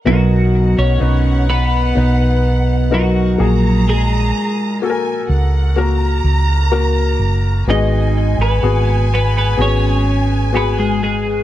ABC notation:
X:1
M:4/4
L:1/16
Q:1/4=63
K:B
V:1 name="Violin section"
f12- f2 a2- | a4 g2 f2 a8 | g16 |]
V:2 name="Felt piano"
[B,D=A^A]4 [B,DB]4 [B,DB]4 [B,DA]2 [A,FG]2- | [A,FG]4 [A,F=A^A]4 [A,FA]4 [A,FA]4 | [B,FG]4 [B,FG]4 [B,FG]4 [B,FG]4 |]
V:3 name="Felt piano" clef=bass
B,,6 z8 A,,2- | A,,4 z12 | G,,6 z8 z2 |]
V:4 name="Clean electric guitar"
[F,F]3 [Cc]3 [B,B]6 [F,F]4 | [G,G]4 z12 | [Dd]3 [B,B]3 [B,B] [B,B] [Cc]4 [B,B] [G,G] [G,G]2 |]
V:5 name="Fingered electric bass" clef=bass
B,,,3 B,,, B,,,4 B,,,6 A,,,2- | A,,,2 z4 C,,4 C,,4 F,,,2 | G,,,3 G,,, G,,,4 G,,,8 |]